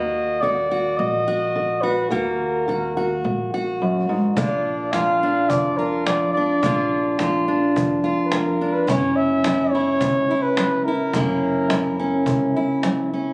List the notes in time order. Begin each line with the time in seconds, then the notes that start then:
Already playing: D#2 A#3 F#4 D#5
0.41 D#3 F#4 D5
0.71 F#4
0.97 A#1 A#2 D#5
1.28 F#4
1.56 D#3
1.82 F#4 B4
2.10 D#2 A#3 F#4 A#4
2.68 D#3 F#4
2.97 F#4
3.24 A#1 A#2
3.54 F#4
3.82 F#2
4.09 G#2
4.37 A#1 A#2 A#3 D4 F4 D5, cajon bass
4.51 cajon slap
4.65 cajon slap
4.92 F3 F4 F5, cajon bass, cajon slap
5.23 D4
5.50 F2 D5, cajon bass
5.78 F4 A#4
6.06 F3 D5, cajon slap
6.33 D4 D5
6.63 A#1 A#2 A#3 D4 F4, cajon bass
6.91 cajon slap
7.19 F3 F4, cajon bass, cajon slap
7.48 D4
7.76 F2, cajon bass
8.04 F4, cajon slap
8.25 B4
8.32 F3 A#4, cajon slap
8.61 D4
8.73 B4
8.87 F#1 F#2 C#4 E4 C#5, cajon bass
9.02 cajon slap
9.16 E5, cajon slap
9.44 F#3 E4, cajon bass, cajon slap
9.71 E4 C#5
10.01 C#2 C#3, cajon bass
10.29 E4, cajon slap
10.42 B4
10.57 F#3, cajon slap
10.85 E4 A#4
11.13 F#1 F#2 A#3 C#4 E4, cajon bass
11.70 F#3 E4, cajon bass, cajon slap
11.99 C#4
12.13 cajon slap
12.26 C#2 C#3, cajon bass
12.56 E4
12.83 F#3, cajon slap
13.14 C#4
13.26 cajon slap